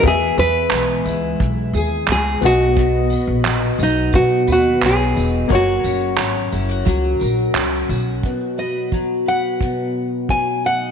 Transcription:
<<
  \new Staff \with { instrumentName = "Nylon-string guitar" } { \time 4/4 \key b \major \tempo 4 = 88 gis'8 b'2~ b'8 gis'8 fis'8~ | fis'4. dis'8 fis'8 fis'8 gis'4 | fis'2. r4 | r8 dis''4 fis''4. gis''8 fis''8 | }
  \new Staff \with { instrumentName = "Upright piano" } { \time 4/4 \key b \major <b gis' e''>2.~ <b gis' e''>8 <b fis' dis''>8~ | <b fis' dis''>2.~ <b fis' dis''>8 r8 | <ais fis' cis''>1 | r1 | }
  \new Staff \with { instrumentName = "Steel-string acoustic guitar" } { \time 4/4 \key b \major e8 b8 gis8 e'4 gis'8 gis8 b,8 | b,8 b8 fis8 dis'8 b,8 b'8 fis8 dis'8 | fis8 cis'8 cis'8 e'16 fis'16 fis8 ais'8 cis'8 fis'8 | b,8 b8 fis8 b'8 b,4 fis8 dis'8 | }
  \new Staff \with { instrumentName = "Upright bass" } { \clef bass \time 4/4 \key b \major e,8 e,8 b,,8 cis,8 b,,8 dis,8 cis,8 b,,8~ | b,,8. ais,,8. b,,8 b,8 dis,8 b,,8 e,,8 | fis,,8 fis,,8 gis,,8 fis,,8 cis,8 ais,,8 cis,8 b,,8 | r1 | }
  \new DrumStaff \with { instrumentName = "Drums" } \drummode { \time 4/4 bd8 tamb8 hc8 tamb8 bd8 tamb8 hc8 tamb8 | bd8 tamb8 hc8 tamb8 bd8 tamb8 hc8 tamb8 | bd8 tamb8 hc8 tamb8 bd8 tamb8 hc8 tamb8 | bd4 bd4 bd4 bd4 | }
>>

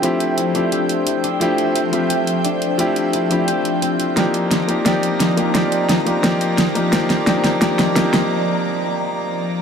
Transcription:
<<
  \new Staff \with { instrumentName = "Analog synth pad" } { \time 4/4 \key c \dorian \tempo 4 = 174 << { <c'' e'' g''>1~ | <c'' e'' g''>1~ | <c'' e'' g''>1 | <d'' bes''>1~ |
<d'' bes''>1~ | <d'' bes''>1~ | <d'' bes''>1 | } \\ { f1~ | f1~ | f1~ | f1~ |
f1~ | f1~ | f1 | } >> }
  \new Staff \with { instrumentName = "Harp" } { \time 4/4 \key c \dorian r4 e'8 d'8 g'8 r8 e'8 d'8 | c'8 r8 e'8 f'8 g'8 r8 d'8 r8 | r4 e'8 d'8 g'8 r8 c'8 f'8 | c'8 r8 ees'8 f'8 c'8 r8 ees'8 f'8 |
c'8 r8 ees'8 f'8 c'8 r8 ees'8 f'8 | c'8 r8 c'8 r8 c'8 r8 c'8 r8 | r1 | }
  \new Staff \with { instrumentName = "Grand piano" } { \time 4/4 \key c \dorian <f a c' e' g'>4. <f a c' e' g'>2~ <f a c' e' g'>8 | <f a c' e' g'>4. <f a c' g' e''>2~ <f a c' g' e''>8 | <f a c' e' g'>4. <f a c' e' g'>2~ <f a c' e' g'>8 | <f bes d' ees' g'>4. <f bes d' ees' g'>8 <f bes ees' g' d''>4. <f bes d' ees' g'>8 |
<f bes ees' g' d''>4. <f bes d' ees' g'>8 <f bes ees' g' d''>4. <f bes d' ees' g'>8 | <f bes ees' g' d''>4 <f bes d' ees' g'>4 <f bes d' ees' g'>4 <f bes d' ees' g'>4 | r1 | }
  \new Staff \with { instrumentName = "Sub bass" } { \clef bass \time 4/4 \key c \dorian r4. d,,4 d,4. | d,4. d,,2 a,,16 r16 | r4. d,,4~ d,,16 d,4~ d,16 | c,4. r2 r8 |
r2 r8 c,4. | r1 | r1 | }
  \new DrumStaff \with { instrumentName = "Drums" } \drummode { \time 4/4 hh8 hh8 hh8 hh8 hh8 hh8 hh8 hh8 | hh8 hh8 hh8 hh8 hh8 hh8 hh8 hh8 | hh8 hh8 hh8 hh8 hh8 hh8 hh8 hh8 | <hh sn>8 hh8 <hh sn>8 hh8 <hh sn>8 hh8 <hh sn>8 hh8 |
<hh sn>8 hh8 <hh sn>8 hh8 <hh sn>8 hh8 <hh sn>8 hh8 | <hh sn>8 <hh sn>8 <hh sn>8 <hh sn>8 <hh sn>8 <hh sn>8 <hh sn>8 <hh sn>8 | r4 r4 r4 r4 | }
>>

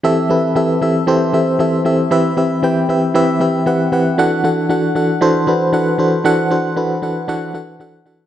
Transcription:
\new Staff \with { instrumentName = "FM electric piano" } { \time 4/4 \key a \dorian \tempo 4 = 116 <e c' g' a' e''>8 <e c' g' a' b'>8 <e c' g' a' e''>8 <e c' g' a' e''>8 <e c' g' a' c''>8 <e c' g' a' e''>8 <e c' g' a' e''>8 <e c' g' a' e''>8 | <e c' g' b' e''>8 <e c' g' b' e''>8 <e c' g' b' g''>8 <e c' g' b' e''>8 <e c' g' b' e''>8 <e c' g' b' e''>8 <e c' g' b' fis''>8 <e c' g' b' fis''>8 | <e d' fis' a' fis''>8 <e d' fis' a' fis''>8 <e d' fis' a' fis''>8 <e d' fis' a' fis''>8 <e d' fis' a' c''>8 <e d' fis' a' b'>8 <e d' fis' a' fis''>8 <e d' fis' a' c''>8 | <e d' fis' a' fis''>8 <e d' fis' a' c''>8 <e d' fis' a' b'>8 <e d' fis' a' fis''>8 <e d' fis' a' fis''>8 <e d' fis' a' fis''>8 <e d' fis' a' fis''>8 <e d' fis' a' fis''>8 | }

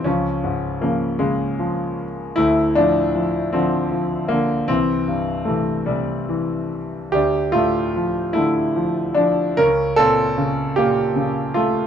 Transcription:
\new Staff \with { instrumentName = "Grand piano" } { \clef bass \time 6/8 \key d \minor \tempo 4. = 51 << { <f des'>4 <des bes>8 <des aes>4 r8 | <a e'>8 <f d'>4 <f c'>4 <d bes>8 | <e c'>4 <c a>8 <c g>4 r8 | <d' g'>8 <a f'>4 <a e'>4 <f d'>8 |
<des' bes'>8 <c' a'>4 <bes g'>4 <a f'>8 | } \\ { des,8 aes,8 f4 f4 | d,8 a,8 f8 d8 f4 | c,8 g,8 e4 e4 | d,8 a,8 f8 d8 f4 |
des,8 bes,8 des8 bes,8 des4 | } >> }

